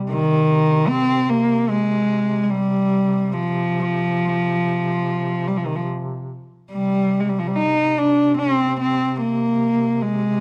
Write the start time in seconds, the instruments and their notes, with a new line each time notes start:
Already playing: duduk C3
0.10 cello D#3
0.88 cello C4
1.29 cello A#3
1.69 cello G#3
2.43 cello G#3
2.50 cello G3
3.33 cello F3
5.47 cello G3
5.57 cello F3
5.66 cello D#3
5.75 cello F3
6.71 duduk C3, cello G3
7.20 cello G#3
7.29 cello G3
7.39 cello F3
7.47 cello G3
7.56 cello D#4
7.98 cello D4
8.38 cello C4
8.81 cello C4
9.21 cello A#3
10.02 cello G#3